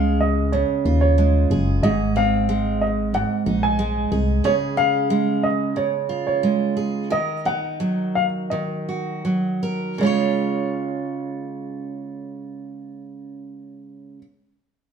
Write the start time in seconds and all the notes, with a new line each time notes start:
Already playing: C#2 C#3 G#3 C#4 G#4 F5
0.21 D#5
0.52 C#3 C#5
0.85 D#2 F4
1.01 C#5
1.18 G#3
1.51 F#1 G#4
1.83 G#1 G#2 G#4 D#5
2.16 C4 F5
2.49 G#3
2.81 D#5
3.14 G#2 F#5
3.46 A#1 D#4
3.63 G#5
3.79 G#3
4.12 C2 G#4
4.44 C#3 G#4 C#5
4.77 C#4 F5
5.10 G#3
5.43 D#5
5.76 C#3 C#5
6.09 F4
6.27 C#5
6.43 G#3
6.77 G#4
7.10 D#3 A#4 D#5
7.45 D#4 F#5
7.80 F#3
8.15 F5
8.50 D#3 D#5
8.89 F#4
9.25 F#3
9.63 A#4
9.98 C#3 G#3 C#5
10.03 C#4 F4 C#5